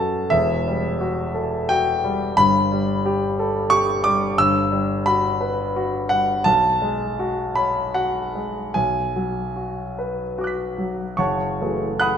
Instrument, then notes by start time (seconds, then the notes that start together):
grand piano
Already playing: F#2 F#4 A4 A5
0.30 E1 E2 E5
0.68 G3
1.01 F#4
1.34 A4
1.69 F#4 G5
2.04 G3
2.37 G1 G2 B5
2.72 G3
3.06 G4
3.39 A4
3.70 G4 C#6
4.04 G3 D6
4.37 G1 G2 E6
4.72 G3
5.06 F#4 B5
5.41 B4
5.76 F#4
6.09 G3 F#5
6.44 B1 A5
6.82 G#3
7.19 F#4
7.55 C#5 B5
7.94 F#4 F#5
8.35 G#3
8.74 B1 G#5
9.16 F#3
9.56 F#4
9.99 B4
10.38 F#4 F#5 D6
10.44 F#6 B6
10.78 F#3
11.17 F#1 C#5 F#5 A5 C#6
11.61 E3 A3 F#4 G#4
12.00 F#5 B5 D#6 F#6